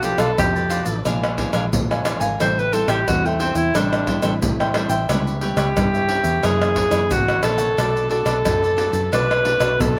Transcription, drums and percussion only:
0.03 pandeiro medium
0.03 shaker medium
0.18 pandeiro medium
0.18 tamborim medium
0.18 shaker medium
0.38 pandeiro medium
0.38 tamborim medium
0.38 shaker medium
0.38 surdo loud
0.56 pandeiro soft
0.56 shaker soft
0.70 pandeiro medium
0.70 shaker medium
0.86 pandeiro medium
0.86 shaker medium
1.05 pandeiro medium
1.05 tamborim medium
1.05 shaker medium
1.05 surdo medium
1.24 pandeiro soft
1.24 tamborim medium
1.24 shaker soft
1.38 pandeiro medium
1.38 surdo medium
1.53 pandeiro medium
1.53 tamborim medium
1.53 shaker medium
1.73 pandeiro medium
1.73 shaker medium
1.73 surdo loud
1.91 pandeiro soft
1.91 tamborim medium
1.91 shaker soft
2.05 pandeiro medium
2.05 tamborim medium
2.05 shaker medium
2.21 pandeiro medium
2.21 shaker medium
2.40 pandeiro medium
2.40 tamborim medium
2.40 shaker medium
2.40 surdo medium
2.59 pandeiro soft
2.59 shaker soft
2.73 pandeiro medium
2.73 shaker medium
2.88 pandeiro medium
2.88 tamborim medium
2.88 shaker medium
3.08 pandeiro medium
3.08 tamborim medium
3.08 shaker medium
3.08 surdo loud
3.25 pandeiro soft
3.25 shaker soft
3.40 pandeiro medium
3.55 pandeiro medium
3.55 shaker medium
3.75 pandeiro medium
3.75 tamborim medium
3.75 shaker medium
3.75 surdo medium
3.93 pandeiro soft
3.93 tamborim medium
3.93 shaker soft
4.07 pandeiro medium
4.07 surdo medium
4.22 pandeiro medium
4.22 tamborim medium
4.22 shaker medium
4.42 pandeiro medium
4.42 shaker medium
4.42 surdo loud
4.60 pandeiro soft
4.60 tamborim medium
4.60 shaker soft
4.74 pandeiro medium
4.74 tamborim medium
4.90 pandeiro medium
4.90 shaker medium
5.09 pandeiro medium
5.09 tamborim medium
5.09 shaker medium
5.09 surdo medium
5.27 pandeiro soft
5.27 shaker soft
5.41 pandeiro medium
5.57 pandeiro medium
5.57 tamborim medium
5.57 shaker medium
5.77 pandeiro medium
5.77 tamborim medium
5.77 shaker medium
5.77 surdo loud
5.95 pandeiro soft
5.95 shaker soft
6.09 pandeiro medium
6.24 pandeiro medium
6.24 shaker medium
6.43 pandeiro medium
6.43 tamborim medium
6.43 shaker medium
6.43 surdo medium
6.62 pandeiro soft
6.62 tamborim medium
6.62 shaker soft
6.76 pandeiro medium
6.76 surdo medium
6.91 pandeiro medium
6.91 tamborim medium
6.91 shaker medium
7.11 pandeiro medium
7.11 shaker medium
7.11 surdo loud
7.28 pandeiro soft
7.28 tamborim medium
7.28 shaker soft
7.43 pandeiro medium
7.43 tamborim medium
7.43 shaker medium
7.58 pandeiro medium
7.58 shaker medium
7.78 pandeiro medium
7.78 tamborim medium
7.78 shaker medium
7.78 surdo medium
7.97 pandeiro soft
7.97 shaker soft
8.11 pandeiro medium
8.26 pandeiro medium
8.26 tamborim medium
8.26 shaker medium
8.45 pandeiro medium
8.45 tamborim medium
8.45 shaker medium
8.45 surdo medium
8.64 pandeiro soft
8.64 shaker soft
8.78 pandeiro medium
8.93 pandeiro medium
8.93 shaker medium
9.13 pandeiro medium
9.13 tamborim medium
9.13 shaker medium
9.13 surdo medium
9.31 pandeiro soft
9.31 tamborim medium
9.31 shaker soft
9.45 pandeiro medium
9.60 pandeiro medium
9.60 tamborim medium
9.60 shaker medium
9.80 pandeiro medium
9.80 shaker medium
9.80 surdo loud

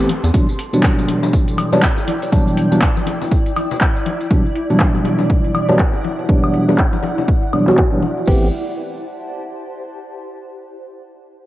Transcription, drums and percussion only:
0.09 open hi-hat loud
0.09 high conga medium
0.24 closed hi-hat soft
0.24 tambourine medium
0.34 kick loud
0.34 closed hi-hat medium
0.34 tambourine medium
0.49 tambourine soft
0.59 open hi-hat loud
0.73 closed hi-hat soft
0.73 tambourine medium
0.83 kick loud
0.83 clap loud
0.83 closed hi-hat medium
0.83 tambourine medium
0.98 tambourine soft
0.98 high conga medium
1.08 open hi-hat loud
1.08 high bongo soft
1.08 high conga medium
1.23 tambourine medium
1.23 low conga medium
1.33 kick loud
1.33 closed hi-hat medium
1.33 tambourine medium
1.48 closed hi-hat soft
1.48 tambourine soft
1.57 open hi-hat loud
1.57 high conga medium
1.57 high woodblock medium
1.73 tambourine medium
1.73 high bongo medium
1.73 low conga medium
1.82 kick loud
1.82 clap loud
1.82 closed hi-hat medium
1.82 tambourine medium
1.97 tambourine soft
1.97 high bongo soft
2.08 open hi-hat loud
2.08 high conga medium
2.22 closed hi-hat medium
2.22 tambourine medium
2.32 kick loud
2.32 closed hi-hat medium
2.32 tambourine medium
2.47 tambourine soft
2.57 open hi-hat loud
2.72 closed hi-hat soft
2.72 tambourine medium
2.82 kick loud
2.82 clap loud
2.82 closed hi-hat medium
2.82 tambourine medium
2.97 tambourine soft
2.97 high conga loud
3.06 open hi-hat loud
3.06 high bongo medium
3.06 high conga medium
3.22 tambourine medium
3.22 low conga medium
3.32 kick loud
3.32 closed hi-hat medium
3.32 tambourine medium
3.46 closed hi-hat medium
3.46 tambourine soft
3.56 open hi-hat loud
3.56 high conga medium
3.56 high woodblock medium
3.71 tambourine medium
3.71 low conga medium
3.81 kick loud
3.81 clap loud
3.81 closed hi-hat medium
3.81 tambourine medium
3.96 tambourine soft
4.06 open hi-hat loud
4.06 high conga medium
4.21 closed hi-hat medium
4.21 tambourine medium
4.31 kick loud
4.31 closed hi-hat medium
4.31 tambourine medium
4.46 tambourine soft
4.56 open hi-hat loud
4.70 closed hi-hat soft
4.70 tambourine medium
4.80 kick loud
4.80 clap loud
4.80 closed hi-hat medium
4.80 tambourine medium
4.95 tambourine soft
4.95 high conga medium
5.05 open hi-hat loud
5.05 high bongo medium
5.05 high conga medium
5.19 tambourine medium
5.19 low conga medium
5.30 kick loud
5.30 closed hi-hat medium
5.30 tambourine medium
5.45 closed hi-hat medium
5.45 tambourine soft
5.55 open hi-hat loud
5.55 high conga medium
5.55 high woodblock medium
5.69 tambourine medium
5.69 high bongo medium
5.69 low conga medium
5.79 kick loud
5.79 clap loud
5.79 closed hi-hat medium
5.79 tambourine medium
5.93 tambourine soft
5.93 high bongo medium
6.04 open hi-hat loud
6.04 high conga medium
6.19 closed hi-hat medium
6.19 tambourine medium
6.29 kick loud
6.29 closed hi-hat medium
6.44 tambourine soft
6.44 high woodblock medium
6.54 open hi-hat loud
6.69 closed hi-hat soft
6.69 tambourine medium
6.69 high bongo medium
6.78 kick loud
6.78 clap loud
6.93 closed hi-hat soft
6.93 tambourine soft
6.93 high conga medium
7.03 open hi-hat loud
7.03 high bongo medium
7.03 high conga medium
7.18 closed hi-hat soft
7.18 tambourine medium
7.18 low conga medium
7.28 kick loud
7.43 closed hi-hat medium
7.43 tambourine soft
7.53 open hi-hat loud
7.53 high conga medium
7.53 high woodblock medium
7.67 clap soft
7.67 closed hi-hat soft
7.67 tambourine medium
7.67 low conga medium
7.77 kick loud
7.77 clap loud
7.93 closed hi-hat soft
7.93 tambourine soft
8.03 open hi-hat loud
8.03 high conga medium
8.17 closed hi-hat medium
8.17 tambourine medium
8.28 kick loud
8.28 crash medium

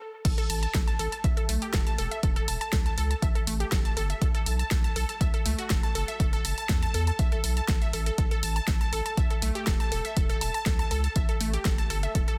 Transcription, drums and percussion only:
0.25 kick loud
0.25 closed hi-hat loud
0.25 crash loud
0.38 closed hi-hat soft
0.50 open hi-hat loud
0.63 closed hi-hat soft
0.74 kick loud
0.74 snare loud
0.74 closed hi-hat loud
0.88 closed hi-hat soft
0.99 open hi-hat medium
1.12 closed hi-hat soft
1.24 kick loud
1.24 closed hi-hat medium
1.37 closed hi-hat soft
1.49 open hi-hat loud
1.62 closed hi-hat soft
1.73 kick loud
1.73 snare loud
1.73 closed hi-hat loud
1.87 closed hi-hat soft
1.98 open hi-hat medium
2.11 closed hi-hat soft
2.23 kick loud
2.23 closed hi-hat medium
2.36 closed hi-hat soft
2.48 open hi-hat loud
2.61 closed hi-hat soft
2.73 kick loud
2.73 snare loud
2.73 closed hi-hat medium
2.86 closed hi-hat soft
2.98 open hi-hat loud
3.11 closed hi-hat soft
3.22 kick loud
3.22 closed hi-hat medium
3.35 closed hi-hat soft
3.47 open hi-hat loud
3.60 closed hi-hat soft
3.72 kick loud
3.72 snare loud
3.72 closed hi-hat medium
3.85 closed hi-hat soft
3.97 open hi-hat loud
4.10 closed hi-hat soft
4.22 kick loud
4.22 closed hi-hat medium
4.35 closed hi-hat soft
4.46 open hi-hat loud
4.59 closed hi-hat soft
4.71 kick loud
4.71 snare loud
4.71 closed hi-hat medium
4.84 closed hi-hat soft
4.96 open hi-hat loud
5.09 closed hi-hat soft
5.21 kick loud
5.21 closed hi-hat medium
5.34 closed hi-hat soft
5.46 open hi-hat loud
5.59 closed hi-hat soft
5.70 kick loud
5.70 snare loud
5.70 closed hi-hat medium
5.83 closed hi-hat soft
5.95 open hi-hat loud
6.08 closed hi-hat soft
6.20 kick loud
6.20 closed hi-hat medium
6.33 closed hi-hat soft
6.45 open hi-hat loud
6.58 closed hi-hat soft
6.69 kick loud
6.69 snare loud
6.69 closed hi-hat medium
6.82 closed hi-hat soft
6.94 open hi-hat loud
7.07 closed hi-hat soft
7.19 kick loud
7.19 closed hi-hat medium
7.32 closed hi-hat soft
7.44 open hi-hat loud
7.57 closed hi-hat soft
7.68 kick loud
7.68 snare loud
7.68 closed hi-hat medium
7.82 closed hi-hat soft
7.93 open hi-hat loud
8.06 closed hi-hat soft
8.18 kick loud
8.18 closed hi-hat medium
8.31 closed hi-hat soft
8.43 open hi-hat loud
8.56 closed hi-hat soft
8.68 kick loud
8.68 snare loud
8.68 closed hi-hat medium
8.81 closed hi-hat soft
8.93 open hi-hat medium
9.06 closed hi-hat soft
9.17 kick loud
9.17 closed hi-hat medium
9.30 closed hi-hat soft
9.42 open hi-hat loud
9.55 closed hi-hat soft
9.67 kick loud
9.67 snare loud
9.67 closed hi-hat medium
9.80 closed hi-hat soft
9.92 open hi-hat medium
10.05 closed hi-hat soft
10.17 kick loud
10.17 closed hi-hat medium
10.30 closed hi-hat soft
10.41 open hi-hat loud
10.54 closed hi-hat soft
10.66 kick loud
10.66 snare loud
10.66 closed hi-hat medium
10.79 closed hi-hat soft
10.91 open hi-hat medium
11.04 closed hi-hat soft
11.16 kick loud
11.16 closed hi-hat medium
11.29 closed hi-hat soft
11.41 open hi-hat loud
11.54 closed hi-hat soft
11.65 kick loud
11.65 snare loud
11.65 closed hi-hat medium
11.78 closed hi-hat soft
11.90 open hi-hat medium
12.03 closed hi-hat soft
12.15 kick loud
12.15 closed hi-hat loud
12.28 closed hi-hat soft

